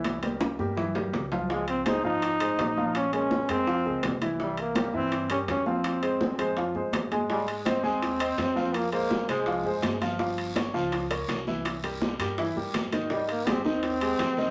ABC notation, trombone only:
X:1
M:4/4
L:1/8
Q:1/4=166
K:Fm
V:1 name="Trombone"
z8 | A, C E E4- E | D D2 C4 z | G, B,2 C2 D D C- |
C6 z2 | G, A, C C4- C | B, B,2 A,4 z | z8 |
z8 | G, B, C C4- C |]